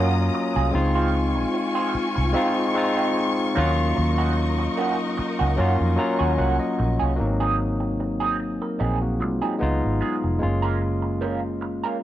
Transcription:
Already playing: fingered electric bass F#2, clean electric guitar F#3 A#3 C#4 F#4, string section F#3 D#5 A#5 D#6, tine electric piano F#3 A#3 C#4 F4
0.34 muted clean electric guitar stroke
0.56 fingered electric bass C2, clean electric guitar F#3 A#3 C#4 G#4
0.71 fingered electric bass C#2, tine electric piano G#3 C4 D#4 F4, muted clean electric guitar stroke
0.77 string section C4 F4 G#5 C#6
0.95 clean electric guitar F3 G#3 C4 F4
1.14 muted clean electric guitar stroke
1.36 muted clean electric guitar stroke
1.54 muted clean electric guitar stroke
1.75 clean electric guitar F3 G#3 C4 F4
1.95 muted fingered electric bass stroke
2.15 fingered electric bass C2, muted clean electric guitar stroke
2.33 clean electric guitar F3 G#3 C4 F4, tine electric piano G#3 C4 D#4 F4
2.74 tine electric piano G#3 C4 D#4 F4, muted clean electric guitar stroke
2.97 clean electric guitar F3 G#3 C4 F4
3.16 muted clean electric guitar stroke
3.55 fingered electric bass D#2, clean electric guitar D#3 A#3 C#4 F#4, tine electric piano F#3 A#3 C#4 F4, string section D#4 A#4 D#5
3.77 muted clean electric guitar stroke
3.95 fingered electric bass D#2, muted clean electric guitar stroke
4.18 clean electric guitar D#3 A#3 C#4 F#4
4.36 muted clean electric guitar stroke
4.59 muted clean electric guitar stroke
4.77 clean electric guitar D#3 A#3 C#4 F#4
5.17 muted clean electric guitar stroke, muted fingered electric bass stroke
5.39 fingered electric bass C#2, clean electric guitar D#3 A#3 C#4 F#4
5.56 fingered electric bass F#2, clean electric guitar D#3 A#3 C#4 F#4, tine electric piano F#3 A#3 C#4 F4
5.81 fingered electric bass F2
5.96 tine electric piano F#3 A#3 C#4 F4 A#5, muted clean electric guitar stroke
6.19 fingered electric bass D#2, clean electric guitar D#3 A#3 C#4 F#4, tine electric piano G#5
6.38 fingered electric bass C2, clean electric guitar D#3 A#3 C#4 F#4, tine electric piano F#5
6.59 tine electric piano D#5
6.79 fingered electric bass A#1, muted clean electric guitar stroke
6.99 fingered electric bass C2, clean electric guitar D#3 A#3 C#4 G#4
7.16 fingered electric bass G#1, tine electric piano F#3 A#3 B3 D#4, muted clean electric guitar stroke
7.25 tine electric piano C4
7.40 clean electric guitar F#3 C4 D#4 G#4
7.59 muted clean electric guitar stroke
7.80 muted clean electric guitar stroke
8.00 muted clean electric guitar stroke
8.20 clean electric guitar F#3 C4 D#4 G#4
8.62 tine electric piano A#4, muted clean electric guitar stroke
8.79 fingered electric bass A#1, clean electric guitar F#3 C4 D#4 G#4, tine electric piano C4 G#4
9.02 tine electric piano A#3 F#4
9.20 fingered electric bass C2, tine electric piano G#3 F4, muted clean electric guitar stroke
9.42 clean electric guitar F#3 C4 D#4 G#4, tine electric piano F#3 D#4
9.59 fingered electric bass C#2, tine electric piano G#3 B3 D#4 F4, muted clean electric guitar stroke
9.85 fingered electric bass G#1
10.01 clean electric guitar G#3 B3 F4 G#4
10.24 fingered electric bass F1, muted clean electric guitar stroke
10.39 tine electric piano G#3 A#3 C#4 F4, muted clean electric guitar stroke
10.43 fingered electric bass F#1
10.62 clean electric guitar A#3 C#4 F4 A#4
11.02 muted clean electric guitar stroke
11.21 clean electric guitar A#3 C#4 F4 A#4
11.61 muted clean electric guitar stroke
11.84 clean electric guitar A#3 C#4 F4 A#4

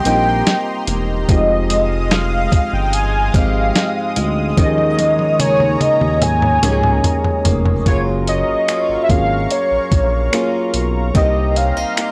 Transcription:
Already playing: steel-string acoustic guitar C3, synth keys C4 D#4 G4, analog synth pad G4 D#5 A#5 C6
0.04 analog synth bass A#1, synth keys G3 A#3 C4 D#4 F4, steel-string acoustic guitar A#3 D#4 G4, soft synth lead G5, closed hi-hat
0.14 synth keys G4
0.47 snare, closed hi-hat
0.88 analog synth bass E1, steel-string acoustic guitar A#3, closed hi-hat
1.28 analog synth bass F1, synth keys F3 G#3 C4 D#4 G4, steel-string acoustic guitar F3, analog synth pad G#3 D#5 F5 D#6, soft synth lead D#5, kick, closed hi-hat
1.70 steel-string acoustic guitar G#3, closed hi-hat
2.11 soft synth lead F5, snare, closed hi-hat
2.52 analog synth bass G1, kick, closed hi-hat
2.73 analog synth bass G1, soft synth lead G5
2.93 soft synth lead G#5, closed hi-hat
3.34 analog synth bass G#1, synth keys F3 G#3 C4 D#4 G4, steel-string acoustic guitar G#3 D#4 G4, soft synth lead F5, kick, closed hi-hat
3.75 snare, closed hi-hat
4.16 analog synth bass D2, steel-string acoustic guitar G#3, closed hi-hat
4.57 analog synth bass D#2, steel-string acoustic guitar D#3, synth keys F3 A#3 C#4 D#4 G4, analog synth pad C#5 A#5, soft synth lead D#5, kick, closed hi-hat, high tom
4.66 synth keys G#4
4.78 high tom
4.98 steel-string acoustic guitar A#3, closed hi-hat, high tom
5.19 high tom
5.40 steel-string acoustic guitar G#4, soft synth lead C#5, closed hi-hat, mid tom
5.60 mid tom
5.81 analog synth bass D#2, soft synth lead D#5, closed hi-hat, mid tom
6.01 analog synth bass D#2, mid tom
6.22 soft synth lead G#5, closed hi-hat, mid tom
6.42 mid tom
6.62 analog synth bass C#2, synth keys F3 A#3 C#4 D#4 G4, steel-string acoustic guitar A#3 C#4 G#4, closed hi-hat, mid tom
6.72 synth keys G#4
6.83 mid tom
7.04 closed hi-hat, floor tom
7.24 floor tom
7.45 analog synth bass F1, steel-string acoustic guitar A#3, closed hi-hat, floor tom
7.66 floor tom
7.85 analog synth bass F#1, synth keys F#3 A#3 C#4 F4 G#4, steel-string acoustic guitar F#3 F4, analog synth pad F#3 F5 A#5 C#6, soft synth lead C#5, kick, closed hi-hat
8.27 steel-string acoustic guitar C#4, soft synth lead D#5, closed hi-hat
8.48 analog synth bass G#1
8.68 steel-string acoustic guitar A#3 C#4 F4, finger snap, closed hi-hat
8.89 analog synth bass G#1
9.03 soft synth lead E5
9.09 analog synth bass G#1, synth keys F#3 A#3 C#4 F4 G#4, soft synth lead F5, kick, closed hi-hat
9.50 steel-string acoustic guitar A#3, soft synth lead C#5, closed hi-hat
9.71 analog synth bass A#1
9.92 analog synth bass A#1, steel-string acoustic guitar A#3, kick, closed hi-hat
10.32 synth keys F#3 A#3 C#4 F4 G#4, steel-string acoustic guitar A#3 C#4 F4, finger snap, closed hi-hat
10.74 analog synth bass B1, closed hi-hat
11.14 analog synth bass C2, steel-string acoustic guitar C3 G4, synth keys G3 A#3 C4 D#4 G4, analog synth pad G4 D#5 C6, soft synth lead D#5, kick, closed hi-hat
11.56 steel-string acoustic guitar C#4, soft synth lead F5, closed hi-hat
11.77 analog synth bass C2, steel-string acoustic guitar D#4
11.97 steel-string acoustic guitar A#3 D#4 G4, finger snap, closed hi-hat

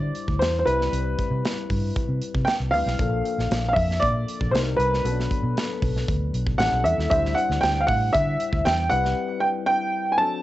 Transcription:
Already playing: fingered electric bass D3, tine electric piano G3 D4 E4 C5, grand piano D5
0.15 closed hi-hat
0.28 fingered electric bass D2, kick
0.39 fingered electric bass E2, grand piano C5, snare, closed hi-hat
0.59 grand piano C5
0.65 fingered electric bass C2, tine electric piano G3 C4 E4 B4, grand piano B4, closed hi-hat
0.81 snare
0.92 fingered electric bass C2, closed hi-hat
1.19 kick, closed hi-hat
1.31 fingered electric bass C3
1.45 snare, closed hi-hat
1.70 fingered electric bass G2, kick, open hi-hat
1.96 kick, closed hi-hat
2.09 fingered electric bass C3
2.22 closed hi-hat
2.34 fingered electric bass C3, kick
2.45 grand piano G5, snare, closed hi-hat
2.60 fingered electric bass C2
2.71 fingered electric bass D2, tine electric piano G3 C4 E4 B4, grand piano F5, open hi-hat
2.86 fingered electric bass B1, snare
2.99 fingered electric bass A#1, tine electric piano F3 A#3 D4 A4, kick, closed hi-hat
3.25 closed hi-hat
3.38 fingered electric bass A#1, snare
3.51 fingered electric bass A#1, snare, closed hi-hat
3.69 grand piano F5
3.73 fingered electric bass F2, grand piano E5, kick, open hi-hat
3.91 snare
4.00 fingered electric bass A#2, grand piano D5, kick, closed hi-hat
4.28 closed hi-hat
4.41 fingered electric bass A#1, kick
4.51 fingered electric bass C2, tine electric piano G3 C4 D#4 A#4, grand piano C5, closed hi-hat
4.55 snare
4.76 fingered electric bass C2, grand piano B4, closed hi-hat
4.94 snare
5.04 fingered electric bass B1, tine electric piano F#3 B3 C#4 A4, closed hi-hat
5.11 tine electric piano D4
5.20 snare
5.31 kick, closed hi-hat
5.43 fingered electric bass B2
5.57 snare, closed hi-hat
5.82 fingered electric bass B1, kick, open hi-hat
5.96 snare
6.08 fingered electric bass D2, kick, closed hi-hat
6.33 fingered electric bass B1, closed hi-hat
6.47 kick
6.58 fingered electric bass A1, tine electric piano G3 C#4 E4 A4, grand piano F#5, snare, closed hi-hat
6.72 fingered electric bass B1
6.84 fingered electric bass E2, grand piano E5, closed hi-hat
6.98 fingered electric bass D#2, snare
7.09 fingered electric bass D2, tine electric piano F#3 D4 E4 C5, grand piano E5, kick, closed hi-hat
7.16 tine electric piano G3
7.25 snare
7.34 grand piano F#5, closed hi-hat
7.49 fingered electric bass D2, snare
7.61 fingered electric bass D2, grand piano G5, snare, closed hi-hat
7.80 grand piano F5
7.87 fingered electric bass A2, grand piano F#5, kick, open hi-hat
8.13 fingered electric bass D3, grand piano E5, kick, closed hi-hat
8.40 closed hi-hat
8.53 fingered electric bass D2, kick
8.65 fingered electric bass E2, grand piano G5, snare, closed hi-hat
8.90 fingered electric bass C2, tine electric piano G3 C4 E4 B4, grand piano F#5, closed hi-hat
9.05 snare
9.40 grand piano G5
9.66 grand piano G5
10.12 grand piano G#5
10.18 tine electric piano F#3 C4 D4 A4, grand piano A5

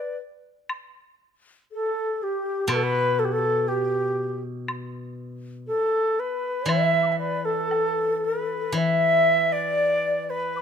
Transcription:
Already playing: xiao B4 D5
0.69 high woodblock
1.71 xiao A4
2.22 xiao G4
2.68 guzheng B2, xiao B4, high woodblock
2.75 xiao A4
2.83 xiao B4
3.19 xiao A4
3.24 xiao G4
3.32 xiao A4
3.39 xiao G4
3.45 xiao A4
3.67 xiao G4
4.68 high woodblock
5.67 xiao A4
6.19 xiao B4
6.66 guzheng E3, xiao E5, high woodblock
7.03 xiao B5 D6
7.10 xiao E5 G5 A5
7.16 xiao B4 D5 E5
7.45 xiao A4
7.71 low woodblock
8.24 xiao B4
8.72 guzheng E3, xiao E5
8.77 xiao E5
9.52 xiao D5
10.29 xiao B4
10.56 xiao D6

